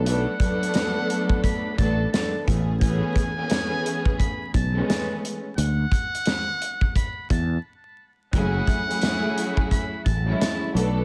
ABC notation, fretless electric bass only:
X:1
M:4/4
L:1/8
Q:"Swing 16ths" 1/4=87
K:F#m
V:1 name="Fretless electric bass" clef=bass
B,,, z4 A,,, z A,,,- | A,,, z4 B,,, z2 | D,, z4 E,, z2 | F,,, z4 A,,, z B,,, |]